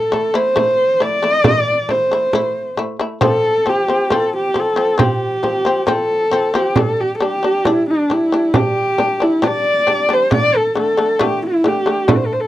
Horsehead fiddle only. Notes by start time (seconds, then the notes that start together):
Already playing: A4
0.36 C5
1.01 D5
1.90 C5
3.22 A4
3.69 G4
4.13 A4
4.37 G4
4.60 A4
5.03 G4
5.89 A4
6.56 G4
6.79 A4
7.01 G4
7.17 A4
7.23 G4
7.67 E4
7.90 D4
8.12 E4
8.56 G4
9.23 E4
9.46 D5
10.13 C5
10.34 D5
10.56 A4
10.78 A4
11.23 G4
11.47 E4
11.68 G4
12.10 A4
12.17 C5
12.26 A4
12.33 C5
12.40 A4